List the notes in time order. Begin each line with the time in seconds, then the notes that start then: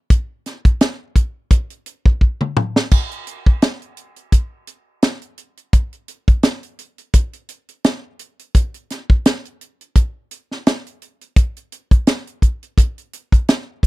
0.10 kick, closed hi-hat
0.46 snare, closed hi-hat
0.65 kick, closed hi-hat
0.81 snare, closed hi-hat
1.16 kick, closed hi-hat
1.51 kick, closed hi-hat
1.70 closed hi-hat
1.86 closed hi-hat
2.06 kick
2.21 kick
2.41 mid tom
2.57 mid tom
2.76 snare
2.91 kick, crash
3.11 closed hi-hat
3.27 closed hi-hat
3.46 kick
3.62 snare, closed hi-hat
3.82 closed hi-hat
3.97 closed hi-hat
4.16 closed hi-hat
4.32 kick, closed hi-hat
4.67 closed hi-hat
5.02 snare, closed hi-hat
5.22 closed hi-hat
5.38 closed hi-hat
5.57 closed hi-hat
5.73 kick, closed hi-hat
5.93 closed hi-hat
6.08 closed hi-hat
6.28 kick, closed hi-hat
6.43 snare, closed hi-hat
6.63 closed hi-hat
6.79 closed hi-hat
6.98 closed hi-hat
7.13 kick, closed hi-hat
7.33 closed hi-hat
7.49 closed hi-hat
7.69 closed hi-hat
7.84 snare, closed hi-hat
8.19 closed hi-hat
8.39 closed hi-hat
8.55 kick, closed hi-hat
8.74 closed hi-hat
8.90 snare, closed hi-hat
9.10 kick
9.26 snare, closed hi-hat
9.45 closed hi-hat
9.61 closed hi-hat
9.81 closed hi-hat
9.96 kick, closed hi-hat
10.31 closed hi-hat
10.51 snare
10.67 snare, closed hi-hat
10.87 closed hi-hat
11.02 closed hi-hat
11.21 closed hi-hat
11.36 kick, closed hi-hat
11.57 closed hi-hat
11.72 closed hi-hat
11.91 kick, closed hi-hat
12.07 snare, closed hi-hat
12.27 closed hi-hat
12.42 kick, closed hi-hat
12.63 closed hi-hat
12.78 kick, closed hi-hat
12.98 closed hi-hat
13.13 closed hi-hat
13.32 kick, closed hi-hat
13.48 snare, closed hi-hat
13.83 kick